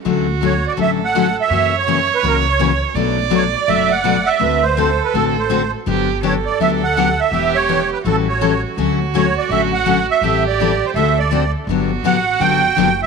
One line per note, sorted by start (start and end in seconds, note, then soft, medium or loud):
0.05 0.63 D2 medium
0.05 0.26 D3 medium
0.05 0.26 F#3 medium
0.05 0.26 A3 medium
0.05 0.26 C#4 medium
0.05 0.79 F#4 medium
0.05 0.26 F#4 medium
0.41 0.52 D3 medium
0.41 0.53 F#3 medium
0.41 0.53 A3 medium
0.41 0.53 C#4 medium
0.41 0.53 F#4 medium
0.41 0.66 C#5 medium
0.67 0.73 D5 medium
0.77 1.36 A1 medium
0.77 0.98 D3 medium
0.77 0.98 F#3 medium
0.77 0.98 A3 medium
0.77 0.98 C#4 medium
0.77 0.99 F#4 medium
0.77 1.50 A4 medium
0.82 0.91 E5 medium
1.05 1.36 F#5 medium
1.15 1.26 D3 medium
1.15 1.26 F#3 medium
1.15 1.26 A3 medium
1.15 1.26 C#4 medium
1.15 1.26 F#4 medium
1.41 1.76 E5 medium
1.50 2.08 F#2 medium
1.50 1.72 C#3 medium
1.50 1.72 E3 medium
1.50 1.72 A#3 medium
1.50 1.72 C#4 medium
1.50 1.72 F#4 medium
1.50 2.96 C#5 loud
1.78 2.15 C#5 medium
1.87 1.98 C#3 medium
1.87 1.98 E3 medium
1.87 1.99 A#3 medium
1.87 1.99 C#4 medium
1.87 1.99 F#4 medium
2.14 2.25 B4 medium
2.23 2.81 C#2 medium
2.23 2.44 C#3 medium
2.23 2.45 E3 medium
2.23 2.44 A#3 medium
2.23 2.45 C#4 medium
2.23 2.45 F#4 medium
2.27 2.36 A#4 medium
2.49 2.81 C#5 medium
2.59 2.71 C#3 medium
2.59 2.71 E3 medium
2.59 2.71 A#3 medium
2.59 2.71 C#4 medium
2.59 2.71 F#4 medium
2.94 3.53 B1 medium
2.94 3.17 B2 medium
2.94 3.17 F#3 medium
2.94 3.17 A3 medium
2.94 3.17 D4 medium
2.94 3.17 F#4 medium
2.94 4.42 D5 loud
3.30 3.42 B2 medium
3.30 3.43 F#3 medium
3.30 3.43 A3 medium
3.30 3.43 D4 medium
3.30 3.43 F#4 medium
3.34 3.44 C#5 medium
3.54 3.69 D5 medium
3.68 4.26 F#1 medium
3.68 3.89 B2 medium
3.68 3.89 F#3 medium
3.68 3.89 A3 medium
3.68 3.90 D4 medium
3.68 3.90 F#4 medium
3.68 3.92 E5 medium
3.91 4.29 F#5 medium
4.04 4.16 B2 medium
4.04 4.16 F#3 medium
4.04 4.16 A3 medium
4.04 4.16 D4 medium
4.04 4.16 F#4 medium
4.26 4.64 E5 medium
4.39 4.99 D2 medium
4.39 4.61 D3 medium
4.39 4.61 A3 medium
4.39 4.62 C4 medium
4.39 4.62 F#4 medium
4.39 4.62 A4 medium
4.39 4.79 B4 medium
4.63 5.03 C5 medium
4.77 4.89 D3 medium
4.77 4.88 A3 medium
4.77 4.89 C4 medium
4.77 4.89 F#4 medium
4.77 5.72 A4 medium
4.77 4.89 A4 medium
5.04 5.14 B4 medium
5.14 5.72 A1 medium
5.14 5.35 D3 medium
5.14 5.35 A3 medium
5.14 5.35 C4 medium
5.14 5.36 F#4 medium
5.14 5.35 A4 medium
5.14 5.25 A4 medium
5.39 5.71 C5 medium
5.50 5.61 D3 medium
5.50 5.61 A3 medium
5.50 5.61 C4 medium
5.50 5.62 F#4 medium
5.50 5.62 A4 medium
5.86 6.45 G1 medium
5.86 6.07 D3 soft
5.86 6.07 F#3 medium
5.86 6.08 B3 medium
5.86 6.08 D4 medium
5.86 6.08 G4 medium
5.86 6.22 G4 medium
6.23 6.34 D3 medium
6.23 6.34 F#3 medium
6.23 6.34 B3 medium
6.23 6.34 D4 medium
6.23 6.35 G4 medium
6.23 7.28 A4 medium
6.23 6.34 C#5 medium
6.46 6.59 D5 medium
6.60 7.18 D2 medium
6.60 6.81 D3 medium
6.60 6.81 F#3 medium
6.60 6.81 B3 medium
6.60 6.81 D4 medium
6.60 6.82 G4 medium
6.60 6.71 E5 medium
6.84 7.20 F#5 medium
6.97 7.07 D3 medium
6.97 7.08 F#3 medium
6.97 7.08 B3 medium
6.97 7.08 D4 medium
6.97 7.08 G4 medium
7.20 7.56 E5 medium
7.32 7.90 E1 medium
7.32 7.53 E3 medium
7.32 7.54 B3 medium
7.32 7.54 D4 medium
7.32 8.02 G4 medium
7.32 7.54 G4 medium
7.55 7.90 C#5 medium
7.69 7.80 E3 medium
7.69 7.80 B3 medium
7.69 7.80 D4 medium
7.69 7.80 G4 medium
7.93 7.98 B4 medium
8.04 8.63 A1 medium
8.04 8.26 E3 medium
8.04 8.26 G3 medium
8.04 8.26 C#4 medium
8.04 8.27 E4 medium
8.04 8.73 F#4 medium
8.04 8.27 A4 medium
8.04 8.16 A4 medium
8.28 8.62 C#5 medium
8.41 8.52 E3 medium
8.41 8.52 G3 medium
8.41 8.52 C#4 medium
8.41 8.52 E4 medium
8.41 8.52 A4 medium
8.77 9.35 D2 medium
8.77 8.98 D3 medium
8.77 8.99 F#3 medium
8.77 8.99 A3 medium
8.77 8.99 C#4 medium
8.77 8.99 F#4 medium
8.77 10.24 F#4 medium
9.14 9.25 D3 medium
9.14 9.25 F#3 medium
9.14 9.25 A3 medium
9.14 9.25 C#4 medium
9.14 9.25 F#4 medium
9.14 9.35 C#5 medium
9.38 9.50 D5 medium
9.49 10.08 A1 medium
9.49 9.71 D3 medium
9.49 9.71 F#3 medium
9.49 9.71 A3 medium
9.49 9.72 C#4 medium
9.49 9.72 F#4 medium
9.49 9.61 E5 medium
9.73 10.07 F#5 medium
9.86 9.97 D3 medium
9.86 9.97 F#3 medium
9.86 9.97 A3 medium
9.86 9.98 C#4 medium
9.86 9.98 F#4 medium
10.11 10.44 E5 medium
10.21 10.80 A1 medium
10.21 10.43 E3 medium
10.21 10.44 G3 medium
10.21 10.44 C4 medium
10.21 10.44 E4 medium
10.21 10.97 G4 medium
10.21 10.44 A4 medium
10.47 10.86 D5 medium
10.60 10.71 E3 medium
10.60 10.71 G3 medium
10.60 10.71 C4 medium
10.60 10.71 E4 medium
10.60 10.71 A4 medium
10.86 10.91 C5 medium
10.94 11.53 D2 medium
10.94 11.16 D3 medium
10.94 11.16 A3 medium
10.94 11.17 C4 medium
10.94 11.17 F#4 medium
10.94 11.54 A4 medium
10.94 11.17 A4 medium
10.94 11.18 E5 medium
11.19 11.52 D5 medium
11.31 11.42 D3 medium
11.31 11.42 A3 medium
11.31 11.43 C4 medium
11.31 11.43 F#4 medium
11.31 11.43 A4 medium
11.67 11.96 G1 medium
11.67 11.89 D3 medium
11.67 11.90 F#3 medium
11.67 11.90 B3 medium
11.67 11.90 D4 medium
11.67 13.07 F#4 medium
11.67 11.90 G4 medium
12.03 12.34 A1 medium
12.03 12.15 D3 medium
12.03 12.15 F#3 medium
12.03 12.16 B3 medium
12.03 12.16 D4 medium
12.03 12.16 G4 medium
12.03 12.43 F#5 medium
12.40 12.71 G1 medium
12.40 12.61 D3 medium
12.40 12.61 F#3 medium
12.40 12.62 B3 medium
12.40 12.62 D4 medium
12.40 12.62 G4 medium
12.40 13.01 G5 loud
12.76 13.07 F#1 medium
12.76 12.87 D3 medium
12.76 12.88 F#3 medium
12.76 12.88 B3 medium
12.76 12.88 D4 medium
12.76 12.89 G4 medium
13.02 13.07 E5 medium